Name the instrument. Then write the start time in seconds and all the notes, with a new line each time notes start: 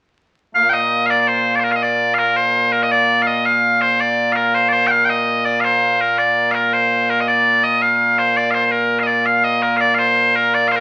bagpipes
0.55 A#2 A#3 F5
0.69 D#5 G5
1.06 F5
1.10 D5
1.20 D5
1.28 C5
1.55 D5
1.60 C5
1.64 A#4
1.72 F5
1.76 D#5
1.83 D5
2.14 F5
2.19 A#4
2.36 C5
2.72 A#4
2.83 D#5
2.92 D5
3.22 F5
3.27 D#5
3.45 F5
3.81 C5
4.00 D5
4.32 A#4 F5
4.55 C5
4.69 C5 D5
4.87 F5 G5
5.05 G5
5.10 D#5
5.45 D5
5.61 C5 F5
6.01 A#4
6.18 D5
6.51 A#4 F5
6.73 C5
7.10 A#4
7.21 D#5
7.28 D5
7.64 D#5
7.82 F5
8.19 C5
8.37 D5
8.51 C5 F5
8.65 C5
8.71 A#4
9.00 D#5 F5
9.07 D5
9.26 F5
9.37 F5
9.44 D#5
9.62 A#4
9.77 D5 F5
9.95 F5
9.99 C5
10.36 A#4
10.54 D5
10.68 C5 F5
10.76 A#4